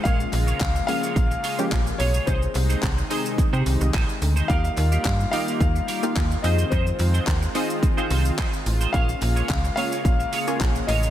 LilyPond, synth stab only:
\new Staff \with { instrumentName = "Synth stab" } { \time 4/4 \key bes \dorian \tempo 4 = 108 <f aes bes des' aes'>4 r8 <f aes bes des' aes'>8. r8 <f aes bes des' g'>8. r8 | <c' ees' aes'>4 r8 <c' ees' aes'>8 r16 <c' ees' g'>4~ <c' ees' g'>16 r8 | <bes ees' f' g' ees''>4 r8 <bes ees' f' g' ees''>8. r8 <bes ees' f' g' f''>8. <c' ees' f' aes' ees''>8~ | <c' ees' f' aes' ees''>4 r8 <c' ees' f' aes' ees''>8 r16 <c' ees' f' aes' f''>4~ <c' ees' f' aes' f''>16 r8 |
<bes des' f' aes' des''>4 r8 <bes des' f' aes' des''>8. r8 <bes des' f' aes' des''>8. r8 | }